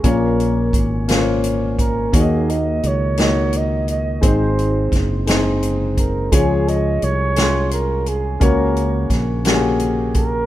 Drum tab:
HH |xxxxxx|xxxxxx|xxxxxx|xxxxxx|
SD |---o--|---o--|--oo--|---o--|
BD |o-o--o|o-----|o-o--o|o-----|

HH |xxxxxx|
SD |--oo--|
BD |o-o--o|